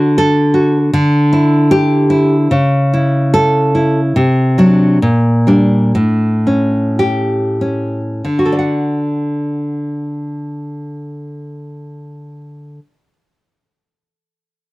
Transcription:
nylon-string guitar
Already playing: D3 F#4
0.18 A4
0.54 F#4
0.93 D3
1.33 E4
1.71 G4
2.10 E4
2.51 C#3
2.93 E4
3.34 A4
3.75 E4
4.16 C3
4.58 F#3 D4
5.02 A#2
5.47 G3 D4
5.95 A2
6.47 C#4
6.99 G4
7.61 C#4
8.25 D3
8.39 F#4
8.46 A4
8.52 D5
8.59 F#5

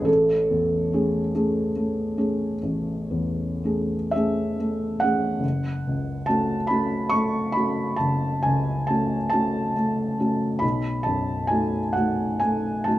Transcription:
felt piano
Already playing: G#3 G#4
0.01 A1 A4
0.51 E2
0.93 A3 C#4 G#4
1.35 A3 C#4 G#4
1.76 A3
2.17 A3 C#4 G#4
2.63 A1
3.11 E2
3.64 A3 C#4 G#4
4.11 E5
4.16 A3 C#4 G#4
4.60 A3
5.00 A3 C#4 F#5
5.04 G#4
5.39 F#1
5.87 C#2
6.26 A3 C#4 F#4 A5
6.67 A3 C#4 F#4 B5
7.09 A3 C#6
7.52 A3 C#4 B5
7.56 F#4
7.96 F#1 A5
8.43 C#2 G#5
8.87 A3 C#4 F#4 A5
9.30 A3 C#4 A5
9.34 F#4
9.76 A3
10.19 A3 C#4 F#4
10.59 B1 B5
11.03 F#2 A5
11.47 A3 D#4 F#4 G#5
11.93 A3 D#4 F#5
11.97 F#4
12.40 A3 G#5
12.84 A3 A5
12.88 D#4 F#4

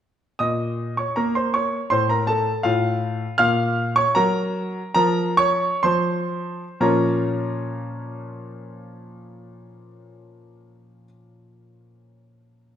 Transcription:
grand piano
0.39 A#2 D#5 D#6
0.97 C#5 C#6
1.16 A#3 A#4 A#5
1.35 C5 C6
1.54 C#5 C#6
1.90 A2 C5 C6
2.09 A#4 A#5
2.27 A4 A5
2.63 A2 F4 F5
3.38 A#2 F5 F6
3.96 C#5 C#6
4.15 F#3 A#4 A#5
4.94 F3 A#4 A#5
5.37 C#5 C#6
5.83 F3 C5 C6
6.80 A#2 F3 C#4 F4 A#4 C#5 A#5

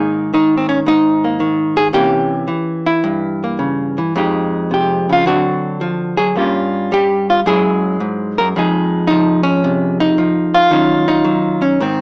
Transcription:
hollow-body jazz guitar
Already playing: G#2 D#3 A#3 D#4 G#4
0.33 D#3 D#4
0.57 C4
0.69 C#4
0.86 G#2 D#4
1.24 A#3
1.40 D#3
1.77 G#4
1.93 C3 E3 A#3 C#4 G4
2.48 E3
2.87 E4
3.04 G2
3.44 A#3
3.59 C#3
3.98 E3
4.16 F2 F3 G#3 D#4 G4
4.71 C3 G4
5.09 C#3 F4
5.26 D3 F#3 C4 D4 F#4
5.81 F3
6.18 F#3 G#4
6.35 G2 G3 A#3 C#4 F4
6.92 G3 G4
7.30 F4
7.46 F#2 F#3 G#3 E4 G#4
8.00 G#2
8.38 F#2 A#4
8.56 F2 F3 G#3 D#4 G#4
9.07 F3 D#4
9.43 C#4
9.64 C3
10.00 D#4
10.18 F3
10.54 F4
10.71 D#3 F#3 C#4 D#4
11.08 D#4
11.25 F#3
11.62 C#4
11.80 G#2 D#3 C4

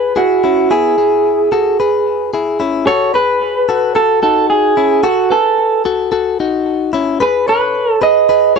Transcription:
clean electric guitar
Already playing: G#4 B4
0.16 E4 F#4 G#4
0.44 C#4 E4
0.71 B3 E4 G#4
0.98 E4 G#4
1.52 F#4 A4
1.80 G#4 B4
2.33 E4 G#4
2.60 C#4 E4
2.87 F#4 A4 C#5
3.14 G#4 B4
3.69 F#4 A4
3.95 F#4 A4
4.23 D#4 F#4 A4
4.50 G#4
4.77 C#4 E4
5.03 F#4 A4
5.30 A4 B4 G#5
5.85 F#4 A4
6.12 F#4 A4
6.40 D#4 F#4
6.93 C#4 E4
7.20 G#4 B4
7.48 A4 B4 C#5
7.92 A4
8.02 G#4 B4 D#5
8.29 G#4 B4
8.56 G#4 C#5

